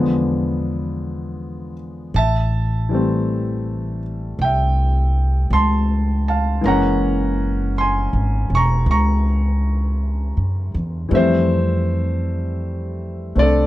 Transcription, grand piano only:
0, 0, Header, 1, 2, 480
1, 0, Start_track
1, 0, Tempo, 1123596
1, 907, Time_signature, 4, 2, 24, 8
1, 5838, End_track
2, 0, Start_track
2, 0, Title_t, "Grand piano"
2, 0, Program_c, 0, 0
2, 0, Note_on_c, 0, 50, 43
2, 0, Note_on_c, 0, 53, 36
2, 0, Note_on_c, 0, 56, 37
2, 0, Note_on_c, 0, 59, 43
2, 0, Note_on_c, 0, 83, 49
2, 0, Note_on_c, 0, 86, 85
2, 14, Control_c, 0, 64, 127
2, 739, Note_off_c, 0, 86, 0
2, 744, Note_off_c, 0, 83, 0
2, 910, Note_off_c, 0, 50, 0
2, 912, Note_off_c, 0, 53, 0
2, 912, Note_off_c, 0, 56, 0
2, 912, Control_c, 0, 64, 0
2, 913, Note_off_c, 0, 59, 0
2, 923, Note_on_c, 0, 81, 84
2, 930, Note_on_c, 0, 76, 57
2, 994, Control_c, 0, 64, 127
2, 1235, Note_on_c, 0, 52, 34
2, 1243, Note_on_c, 0, 55, 35
2, 1251, Note_on_c, 0, 57, 36
2, 1258, Note_on_c, 0, 60, 38
2, 1706, Note_off_c, 0, 81, 0
2, 1709, Note_off_c, 0, 76, 0
2, 1886, Note_on_c, 0, 79, 64
2, 1899, Note_on_c, 0, 76, 46
2, 2347, Note_off_c, 0, 76, 0
2, 2362, Note_on_c, 0, 84, 74
2, 2366, Note_on_c, 0, 81, 56
2, 2372, Note_off_c, 0, 79, 0
2, 2665, Note_off_c, 0, 84, 0
2, 2667, Note_off_c, 0, 81, 0
2, 2684, Note_on_c, 0, 81, 62
2, 2690, Note_on_c, 0, 77, 44
2, 2819, Note_off_c, 0, 52, 0
2, 2825, Note_on_c, 0, 52, 45
2, 2826, Note_off_c, 0, 77, 0
2, 2832, Note_on_c, 0, 56, 41
2, 2833, Note_off_c, 0, 55, 0
2, 2834, Control_c, 0, 64, 0
2, 2837, Note_off_c, 0, 57, 0
2, 2837, Note_off_c, 0, 81, 0
2, 2840, Note_off_c, 0, 60, 0
2, 2840, Note_on_c, 0, 58, 40
2, 2844, Note_on_c, 0, 82, 71
2, 2848, Note_on_c, 0, 61, 53
2, 2853, Note_on_c, 0, 78, 60
2, 2900, Control_c, 0, 64, 127
2, 3302, Note_off_c, 0, 78, 0
2, 3324, Note_on_c, 0, 84, 69
2, 3328, Note_off_c, 0, 82, 0
2, 3335, Note_on_c, 0, 80, 54
2, 3629, Note_off_c, 0, 80, 0
2, 3650, Note_off_c, 0, 84, 0
2, 3652, Note_on_c, 0, 85, 80
2, 3661, Note_on_c, 0, 82, 66
2, 3785, Note_off_c, 0, 85, 0
2, 3789, Note_off_c, 0, 82, 0
2, 3806, Note_on_c, 0, 85, 70
2, 3809, Note_on_c, 0, 82, 55
2, 4583, Note_off_c, 0, 85, 0
2, 4584, Note_off_c, 0, 82, 0
2, 4730, Note_off_c, 0, 52, 0
2, 4736, Note_on_c, 0, 52, 49
2, 4744, Note_off_c, 0, 56, 0
2, 4744, Note_on_c, 0, 55, 46
2, 4748, Note_off_c, 0, 58, 0
2, 4749, Control_c, 0, 64, 0
2, 4749, Note_on_c, 0, 57, 43
2, 4752, Note_off_c, 0, 61, 0
2, 4758, Note_on_c, 0, 60, 51
2, 4763, Note_on_c, 0, 76, 74
2, 4770, Note_on_c, 0, 72, 62
2, 4832, Control_c, 0, 64, 127
2, 5695, Note_off_c, 0, 76, 0
2, 5698, Note_off_c, 0, 57, 0
2, 5699, Note_off_c, 0, 72, 0
2, 5704, Note_off_c, 0, 60, 0
2, 5704, Note_on_c, 0, 57, 38
2, 5710, Note_on_c, 0, 60, 33
2, 5716, Note_on_c, 0, 62, 41
2, 5721, Note_on_c, 0, 74, 74
2, 5734, Note_on_c, 0, 69, 59
2, 5838, Note_off_c, 0, 52, 0
2, 5838, Note_off_c, 0, 55, 0
2, 5838, Note_off_c, 0, 57, 0
2, 5838, Note_off_c, 0, 60, 0
2, 5838, Note_off_c, 0, 62, 0
2, 5838, Note_off_c, 0, 69, 0
2, 5838, Note_off_c, 0, 74, 0
2, 5838, End_track
0, 0, End_of_file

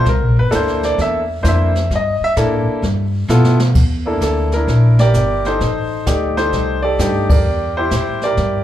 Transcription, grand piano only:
0, 0, Header, 1, 2, 480
1, 0, Start_track
1, 0, Tempo, 462250
1, 57, Time_signature, 4, 2, 24, 8
1, 8969, End_track
2, 0, Start_track
2, 0, Title_t, "Grand piano"
2, 0, Program_c, 0, 0
2, 93, Note_on_c, 0, 70, 90
2, 384, Note_off_c, 0, 70, 0
2, 406, Note_on_c, 0, 71, 91
2, 527, Note_on_c, 0, 58, 73
2, 527, Note_on_c, 0, 62, 64
2, 529, Note_on_c, 0, 69, 81
2, 530, Note_on_c, 0, 64, 61
2, 548, Note_off_c, 0, 71, 0
2, 573, Note_on_c, 0, 72, 89
2, 864, Note_off_c, 0, 72, 0
2, 881, Note_on_c, 0, 74, 93
2, 1026, Note_off_c, 0, 74, 0
2, 1054, Note_on_c, 0, 76, 96
2, 1234, Note_off_c, 0, 76, 0
2, 1267, Note_off_c, 0, 58, 0
2, 1267, Note_off_c, 0, 62, 0
2, 1268, Note_off_c, 0, 69, 0
2, 1269, Note_off_c, 0, 64, 0
2, 1480, Note_on_c, 0, 62, 63
2, 1482, Note_on_c, 0, 58, 69
2, 1485, Note_on_c, 0, 72, 77
2, 1489, Note_on_c, 0, 64, 65
2, 1540, Note_on_c, 0, 76, 85
2, 1775, Note_off_c, 0, 62, 0
2, 1776, Note_off_c, 0, 58, 0
2, 1778, Note_off_c, 0, 72, 0
2, 1780, Note_off_c, 0, 64, 0
2, 1967, Note_off_c, 0, 76, 0
2, 2030, Note_on_c, 0, 75, 88
2, 2313, Note_off_c, 0, 75, 0
2, 2327, Note_on_c, 0, 76, 110
2, 2415, Note_off_c, 0, 76, 0
2, 2457, Note_on_c, 0, 58, 78
2, 2460, Note_on_c, 0, 62, 72
2, 2461, Note_on_c, 0, 64, 69
2, 2461, Note_on_c, 0, 69, 84
2, 2938, Note_off_c, 0, 58, 0
2, 2939, Note_off_c, 0, 62, 0
2, 2940, Note_off_c, 0, 64, 0
2, 2940, Note_off_c, 0, 69, 0
2, 3420, Note_on_c, 0, 64, 71
2, 3423, Note_on_c, 0, 65, 76
2, 3424, Note_on_c, 0, 59, 77
2, 3428, Note_on_c, 0, 69, 85
2, 3705, Note_off_c, 0, 64, 0
2, 3707, Note_off_c, 0, 59, 0
2, 3707, Note_off_c, 0, 65, 0
2, 3710, Note_off_c, 0, 69, 0
2, 4212, Note_on_c, 0, 58, 59
2, 4218, Note_on_c, 0, 62, 57
2, 4220, Note_on_c, 0, 64, 58
2, 4225, Note_on_c, 0, 69, 68
2, 4370, Note_off_c, 0, 69, 0
2, 4385, Note_on_c, 0, 69, 80
2, 4678, Note_off_c, 0, 69, 0
2, 4710, Note_on_c, 0, 70, 86
2, 4715, Note_off_c, 0, 64, 0
2, 4717, Note_off_c, 0, 62, 0
2, 4731, Note_on_c, 0, 64, 63
2, 4732, Note_on_c, 0, 62, 66
2, 4824, Note_off_c, 0, 58, 0
2, 5188, Note_off_c, 0, 70, 0
2, 5191, Note_on_c, 0, 74, 104
2, 5204, Note_on_c, 0, 67, 75
2, 5204, Note_on_c, 0, 70, 74
2, 5631, Note_off_c, 0, 74, 0
2, 5632, Note_off_c, 0, 64, 0
2, 5633, Note_off_c, 0, 62, 0
2, 5674, Note_on_c, 0, 72, 81
2, 5684, Note_on_c, 0, 63, 65
2, 5686, Note_on_c, 0, 69, 61
2, 5791, Note_off_c, 0, 67, 0
2, 5791, Note_off_c, 0, 70, 0
2, 6266, Note_off_c, 0, 72, 0
2, 6289, Note_off_c, 0, 63, 0
2, 6296, Note_on_c, 0, 57, 56
2, 6297, Note_on_c, 0, 74, 52
2, 6304, Note_on_c, 0, 67, 62
2, 6305, Note_on_c, 0, 63, 51
2, 6590, Note_off_c, 0, 69, 0
2, 6617, Note_on_c, 0, 72, 91
2, 6619, Note_off_c, 0, 63, 0
2, 6634, Note_on_c, 0, 63, 55
2, 6639, Note_on_c, 0, 69, 55
2, 7032, Note_off_c, 0, 57, 0
2, 7032, Note_off_c, 0, 74, 0
2, 7036, Note_off_c, 0, 67, 0
2, 7063, Note_off_c, 0, 72, 0
2, 7087, Note_on_c, 0, 74, 92
2, 7093, Note_off_c, 0, 69, 0
2, 7108, Note_on_c, 0, 67, 62
2, 7109, Note_on_c, 0, 69, 64
2, 7256, Note_off_c, 0, 63, 0
2, 7256, Note_off_c, 0, 67, 0
2, 7264, Note_on_c, 0, 57, 63
2, 7264, Note_on_c, 0, 62, 60
2, 7271, Note_on_c, 0, 63, 62
2, 7272, Note_on_c, 0, 67, 69
2, 7537, Note_off_c, 0, 74, 0
2, 7547, Note_off_c, 0, 57, 0
2, 7548, Note_off_c, 0, 62, 0
2, 7551, Note_off_c, 0, 63, 0
2, 7551, Note_off_c, 0, 67, 0
2, 7573, Note_on_c, 0, 74, 86
2, 7591, Note_on_c, 0, 67, 60
2, 7592, Note_on_c, 0, 70, 65
2, 7703, Note_off_c, 0, 69, 0
2, 8021, Note_off_c, 0, 74, 0
2, 8069, Note_on_c, 0, 72, 89
2, 8072, Note_off_c, 0, 67, 0
2, 8085, Note_on_c, 0, 64, 65
2, 8088, Note_on_c, 0, 67, 64
2, 8502, Note_off_c, 0, 70, 0
2, 8552, Note_off_c, 0, 67, 0
2, 8552, Note_on_c, 0, 74, 97
2, 8556, Note_off_c, 0, 72, 0
2, 8568, Note_on_c, 0, 67, 66
2, 8574, Note_on_c, 0, 70, 69
2, 8969, Note_off_c, 0, 64, 0
2, 8969, Note_off_c, 0, 67, 0
2, 8969, Note_off_c, 0, 70, 0
2, 8969, Note_off_c, 0, 74, 0
2, 8969, End_track
0, 0, End_of_file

